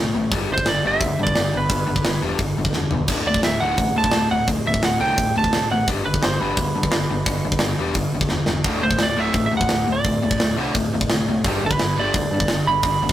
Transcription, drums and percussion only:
0.31 kick loud
0.31 open hi-hat medium
0.58 kick medium
0.66 snare loud
0.66 open hi-hat medium
1.00 kick loud
1.00 open hi-hat medium
1.27 kick medium
1.35 snare loud
1.35 open hi-hat medium
1.69 kick loud
1.69 open hi-hat medium
1.96 kick medium
2.05 snare loud
2.05 open hi-hat medium
2.39 kick loud
2.39 open hi-hat medium
2.65 kick medium
2.73 snare medium
2.91 floor tom medium
3.08 kick loud
3.08 open hi-hat medium
3.08 crash medium
3.34 kick medium
3.43 snare loud
3.43 open hi-hat medium
3.77 kick loud
3.77 open hi-hat medium
4.04 kick medium
4.12 snare loud
4.12 open hi-hat medium
4.47 kick loud
4.47 open hi-hat medium
4.74 kick medium
4.83 snare loud
4.83 open hi-hat medium
5.18 kick loud
5.18 open hi-hat medium
5.44 kick medium
5.53 snare loud
5.53 open hi-hat medium
5.88 kick loud
5.88 open hi-hat soft
6.14 kick medium
6.23 snare loud
6.23 open hi-hat medium
6.57 kick loud
6.57 open hi-hat medium
6.83 kick medium
6.92 snare loud
6.92 open hi-hat medium
7.26 kick loud
7.26 open hi-hat medium
7.52 kick medium
7.59 snare loud
7.59 open hi-hat medium
7.94 kick loud
7.94 open hi-hat medium
8.21 kick medium
8.29 snare medium
8.46 snare medium
8.64 kick loud
8.64 open hi-hat medium
8.91 kick medium
8.99 snare loud
8.99 open hi-hat medium
9.33 kick loud
9.33 open hi-hat medium
9.61 kick medium
9.69 snare loud
9.69 open hi-hat medium
10.04 kick loud
10.04 open hi-hat medium
10.31 kick medium
10.40 snare loud
10.40 open hi-hat medium
10.75 kick loud
10.75 open hi-hat medium
11.01 kick medium
11.10 snare loud
11.10 open hi-hat medium
11.44 kick loud
11.44 open hi-hat medium
11.71 kick medium
11.79 snare loud
11.79 open hi-hat medium
12.14 kick loud
12.14 open hi-hat medium
12.40 kick medium
12.48 snare loud
12.48 open hi-hat medium
12.83 kick loud
12.83 open hi-hat medium
13.09 kick medium

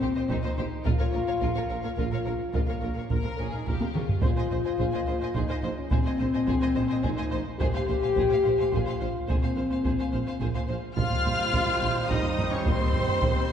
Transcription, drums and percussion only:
0.30 taiko medium
0.86 taiko medium
1.42 taiko medium
1.98 taiko medium
2.54 taiko medium
3.11 taiko medium
3.67 taiko medium
3.81 taiko high medium
3.95 taiko mid medium
4.09 taiko low medium
4.23 taiko medium
4.79 taiko medium
5.35 taiko medium
5.91 taiko medium
6.48 taiko medium
7.05 taiko medium
7.60 taiko medium
8.17 taiko medium
8.73 taiko medium
9.29 taiko medium
9.86 taiko medium
10.41 taiko medium
10.97 taiko medium
11.26 taiko low medium
11.39 taiko low soft
11.54 taiko medium
12.10 taiko medium
12.25 taiko low soft
12.38 taiko low soft
12.66 taiko loud
12.94 taiko low medium
13.08 taiko low soft
13.22 taiko medium

